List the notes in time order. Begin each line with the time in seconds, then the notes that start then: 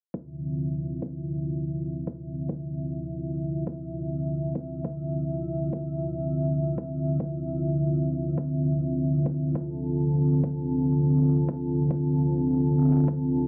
0.14 D3 C4 F4 E5, kick
1.02 kick
2.07 kick
2.49 kick
3.67 kick
4.55 kick
4.85 kick
5.73 kick
6.78 kick
7.20 kick
8.38 kick
9.26 kick
9.55 A5, kick
10.44 kick
11.49 kick
11.91 kick
13.08 kick